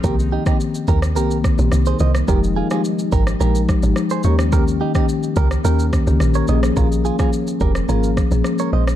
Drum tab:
SH |xx-xxxxxxxxxxxxx|xx-xxxxxxxxxxxxx|xx-xxxxxxxxxxxxx|xxxxxxxxxxxxxx-x|
SD |---r---r--r-r--r|---r---r--r-r--r|---r---r--r-r--r|---r---r--r-r--r|
BD |o--o--o---o-----|o-----o---o-----|o--o--o---o-----|o--o--o---o-----|